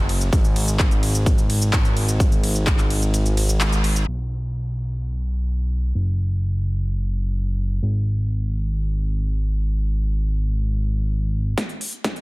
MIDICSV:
0, 0, Header, 1, 3, 480
1, 0, Start_track
1, 0, Key_signature, 5, "minor"
1, 0, Tempo, 468750
1, 334, Time_signature, 4, 2, 24, 8
1, 12503, End_track
2, 0, Start_track
2, 0, Title_t, "Analog synth bass"
2, 0, Program_c, 0, 38
2, 0, Note_on_c, 0, 30, 89
2, 310, Note_off_c, 0, 30, 0
2, 333, Note_on_c, 0, 32, 90
2, 4150, Note_off_c, 0, 32, 0
2, 4173, Note_on_c, 0, 35, 81
2, 6069, Note_off_c, 0, 35, 0
2, 6094, Note_on_c, 0, 30, 84
2, 7990, Note_off_c, 0, 30, 0
2, 8013, Note_on_c, 0, 32, 86
2, 11829, Note_off_c, 0, 32, 0
2, 12503, End_track
3, 0, Start_track
3, 0, Title_t, "Drums"
3, 94, Note_on_c, 9, 46, 91
3, 94, Note_on_c, 9, 51, 82
3, 197, Note_off_c, 9, 46, 0
3, 197, Note_off_c, 9, 51, 0
3, 214, Note_on_c, 9, 42, 41
3, 218, Note_on_c, 9, 82, 74
3, 317, Note_off_c, 9, 42, 0
3, 320, Note_off_c, 9, 82, 0
3, 334, Note_on_c, 9, 36, 115
3, 334, Note_on_c, 9, 42, 72
3, 334, Note_on_c, 9, 51, 59
3, 337, Note_on_c, 9, 82, 61
3, 436, Note_off_c, 9, 36, 0
3, 436, Note_off_c, 9, 42, 0
3, 436, Note_off_c, 9, 51, 0
3, 440, Note_off_c, 9, 82, 0
3, 454, Note_on_c, 9, 42, 42
3, 457, Note_on_c, 9, 82, 37
3, 556, Note_off_c, 9, 42, 0
3, 560, Note_off_c, 9, 82, 0
3, 574, Note_on_c, 9, 46, 105
3, 574, Note_on_c, 9, 51, 83
3, 676, Note_off_c, 9, 46, 0
3, 676, Note_off_c, 9, 51, 0
3, 694, Note_on_c, 9, 42, 41
3, 697, Note_on_c, 9, 82, 70
3, 796, Note_off_c, 9, 42, 0
3, 799, Note_off_c, 9, 82, 0
3, 814, Note_on_c, 9, 36, 113
3, 814, Note_on_c, 9, 39, 115
3, 814, Note_on_c, 9, 42, 69
3, 814, Note_on_c, 9, 51, 59
3, 817, Note_on_c, 9, 82, 60
3, 916, Note_off_c, 9, 36, 0
3, 916, Note_off_c, 9, 39, 0
3, 916, Note_off_c, 9, 42, 0
3, 916, Note_off_c, 9, 51, 0
3, 920, Note_off_c, 9, 82, 0
3, 934, Note_on_c, 9, 42, 41
3, 937, Note_on_c, 9, 82, 35
3, 1036, Note_off_c, 9, 42, 0
3, 1039, Note_off_c, 9, 82, 0
3, 1053, Note_on_c, 9, 46, 90
3, 1053, Note_on_c, 9, 51, 82
3, 1156, Note_off_c, 9, 46, 0
3, 1156, Note_off_c, 9, 51, 0
3, 1174, Note_on_c, 9, 42, 41
3, 1177, Note_on_c, 9, 82, 73
3, 1276, Note_off_c, 9, 42, 0
3, 1279, Note_off_c, 9, 82, 0
3, 1293, Note_on_c, 9, 42, 70
3, 1293, Note_on_c, 9, 51, 57
3, 1294, Note_on_c, 9, 36, 117
3, 1297, Note_on_c, 9, 82, 58
3, 1396, Note_off_c, 9, 36, 0
3, 1396, Note_off_c, 9, 42, 0
3, 1396, Note_off_c, 9, 51, 0
3, 1399, Note_off_c, 9, 82, 0
3, 1413, Note_on_c, 9, 42, 42
3, 1417, Note_on_c, 9, 82, 37
3, 1516, Note_off_c, 9, 42, 0
3, 1519, Note_off_c, 9, 82, 0
3, 1533, Note_on_c, 9, 46, 103
3, 1533, Note_on_c, 9, 51, 80
3, 1635, Note_off_c, 9, 46, 0
3, 1635, Note_off_c, 9, 51, 0
3, 1653, Note_on_c, 9, 42, 41
3, 1657, Note_on_c, 9, 82, 71
3, 1756, Note_off_c, 9, 42, 0
3, 1759, Note_off_c, 9, 82, 0
3, 1773, Note_on_c, 9, 36, 117
3, 1773, Note_on_c, 9, 39, 123
3, 1773, Note_on_c, 9, 42, 72
3, 1773, Note_on_c, 9, 51, 60
3, 1776, Note_on_c, 9, 82, 60
3, 1875, Note_off_c, 9, 42, 0
3, 1875, Note_off_c, 9, 51, 0
3, 1876, Note_off_c, 9, 36, 0
3, 1876, Note_off_c, 9, 39, 0
3, 1879, Note_off_c, 9, 82, 0
3, 1893, Note_on_c, 9, 42, 40
3, 1897, Note_on_c, 9, 82, 35
3, 1996, Note_off_c, 9, 42, 0
3, 1999, Note_off_c, 9, 82, 0
3, 2013, Note_on_c, 9, 46, 90
3, 2013, Note_on_c, 9, 51, 80
3, 2116, Note_off_c, 9, 46, 0
3, 2116, Note_off_c, 9, 51, 0
3, 2133, Note_on_c, 9, 42, 42
3, 2137, Note_on_c, 9, 82, 73
3, 2235, Note_off_c, 9, 42, 0
3, 2239, Note_off_c, 9, 82, 0
3, 2253, Note_on_c, 9, 36, 118
3, 2254, Note_on_c, 9, 42, 74
3, 2254, Note_on_c, 9, 51, 57
3, 2257, Note_on_c, 9, 82, 61
3, 2356, Note_off_c, 9, 36, 0
3, 2356, Note_off_c, 9, 42, 0
3, 2356, Note_off_c, 9, 51, 0
3, 2360, Note_off_c, 9, 82, 0
3, 2374, Note_on_c, 9, 42, 42
3, 2377, Note_on_c, 9, 82, 35
3, 2476, Note_off_c, 9, 42, 0
3, 2480, Note_off_c, 9, 82, 0
3, 2494, Note_on_c, 9, 46, 105
3, 2494, Note_on_c, 9, 51, 81
3, 2596, Note_off_c, 9, 46, 0
3, 2596, Note_off_c, 9, 51, 0
3, 2614, Note_on_c, 9, 42, 42
3, 2617, Note_on_c, 9, 82, 70
3, 2716, Note_off_c, 9, 42, 0
3, 2720, Note_off_c, 9, 82, 0
3, 2733, Note_on_c, 9, 36, 118
3, 2734, Note_on_c, 9, 39, 121
3, 2734, Note_on_c, 9, 42, 71
3, 2734, Note_on_c, 9, 51, 57
3, 2737, Note_on_c, 9, 82, 60
3, 2836, Note_off_c, 9, 36, 0
3, 2836, Note_off_c, 9, 42, 0
3, 2836, Note_off_c, 9, 51, 0
3, 2837, Note_off_c, 9, 39, 0
3, 2840, Note_off_c, 9, 82, 0
3, 2854, Note_on_c, 9, 39, 37
3, 2854, Note_on_c, 9, 42, 43
3, 2857, Note_on_c, 9, 82, 35
3, 2956, Note_off_c, 9, 42, 0
3, 2957, Note_off_c, 9, 39, 0
3, 2960, Note_off_c, 9, 82, 0
3, 2974, Note_on_c, 9, 46, 93
3, 2974, Note_on_c, 9, 51, 80
3, 3076, Note_off_c, 9, 46, 0
3, 3076, Note_off_c, 9, 51, 0
3, 3094, Note_on_c, 9, 42, 42
3, 3097, Note_on_c, 9, 82, 69
3, 3196, Note_off_c, 9, 42, 0
3, 3200, Note_off_c, 9, 82, 0
3, 3214, Note_on_c, 9, 42, 70
3, 3214, Note_on_c, 9, 51, 55
3, 3217, Note_on_c, 9, 82, 60
3, 3316, Note_off_c, 9, 42, 0
3, 3316, Note_off_c, 9, 51, 0
3, 3320, Note_off_c, 9, 82, 0
3, 3334, Note_on_c, 9, 42, 44
3, 3337, Note_on_c, 9, 82, 35
3, 3436, Note_off_c, 9, 42, 0
3, 3440, Note_off_c, 9, 82, 0
3, 3454, Note_on_c, 9, 46, 103
3, 3454, Note_on_c, 9, 51, 80
3, 3556, Note_off_c, 9, 46, 0
3, 3556, Note_off_c, 9, 51, 0
3, 3574, Note_on_c, 9, 42, 42
3, 3577, Note_on_c, 9, 82, 72
3, 3676, Note_off_c, 9, 42, 0
3, 3680, Note_off_c, 9, 82, 0
3, 3694, Note_on_c, 9, 39, 127
3, 3694, Note_on_c, 9, 42, 72
3, 3694, Note_on_c, 9, 51, 58
3, 3697, Note_on_c, 9, 82, 60
3, 3796, Note_off_c, 9, 39, 0
3, 3796, Note_off_c, 9, 42, 0
3, 3796, Note_off_c, 9, 51, 0
3, 3800, Note_off_c, 9, 82, 0
3, 3814, Note_on_c, 9, 42, 43
3, 3817, Note_on_c, 9, 82, 35
3, 3916, Note_off_c, 9, 42, 0
3, 3920, Note_off_c, 9, 82, 0
3, 3934, Note_on_c, 9, 46, 89
3, 3934, Note_on_c, 9, 51, 79
3, 4036, Note_off_c, 9, 46, 0
3, 4036, Note_off_c, 9, 51, 0
3, 4054, Note_on_c, 9, 42, 43
3, 4057, Note_on_c, 9, 82, 71
3, 4156, Note_off_c, 9, 42, 0
3, 4159, Note_off_c, 9, 82, 0
3, 4174, Note_on_c, 9, 49, 76
3, 4276, Note_off_c, 9, 49, 0
3, 11853, Note_on_c, 9, 36, 112
3, 11854, Note_on_c, 9, 38, 47
3, 11854, Note_on_c, 9, 42, 91
3, 11956, Note_off_c, 9, 36, 0
3, 11956, Note_off_c, 9, 38, 0
3, 11956, Note_off_c, 9, 42, 0
3, 11973, Note_on_c, 9, 42, 35
3, 12076, Note_off_c, 9, 42, 0
3, 12093, Note_on_c, 9, 46, 100
3, 12196, Note_off_c, 9, 46, 0
3, 12214, Note_on_c, 9, 42, 39
3, 12316, Note_off_c, 9, 42, 0
3, 12333, Note_on_c, 9, 36, 110
3, 12334, Note_on_c, 9, 38, 48
3, 12334, Note_on_c, 9, 42, 92
3, 12436, Note_off_c, 9, 36, 0
3, 12436, Note_off_c, 9, 38, 0
3, 12436, Note_off_c, 9, 42, 0
3, 12453, Note_on_c, 9, 42, 38
3, 12503, Note_off_c, 9, 42, 0
3, 12503, End_track
0, 0, End_of_file